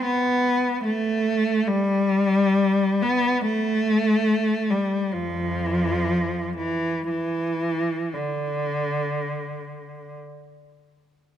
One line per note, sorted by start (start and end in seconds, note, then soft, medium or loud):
0.05 0.84 B3 medium
0.84 1.66 A3 medium
1.67 3.00 G3 medium
3.02 3.45 B3 medium
3.46 4.68 A3 medium
4.70 5.13 G3 medium
5.13 6.53 F2 medium
5.13 6.57 F3 medium
6.57 7.08 E3 medium
7.09 8.11 E3 medium
8.14 10.14 D3 medium